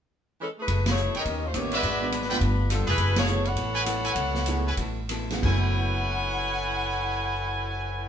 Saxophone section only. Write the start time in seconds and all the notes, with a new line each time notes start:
0.40 E3 G#3 C#4 A4
0.59 A3 E4 G#4 B4
0.88 A3 E4 G#4 C#5
1.16 C#4 G4 A#4 D#5
1.45 A3 C#4 F4 C5
1.56 A#3 D#4 G4 C#5
1.74 G#3 D4 F#4 B4
2.71 F3 B3 D4 A4
2.87 A3 E4 G#4 B4
3.16 A3 E4 G#4 C#5
3.45 E4 A4 C#5 F#5
5.45 E4 A4 C#5 F#5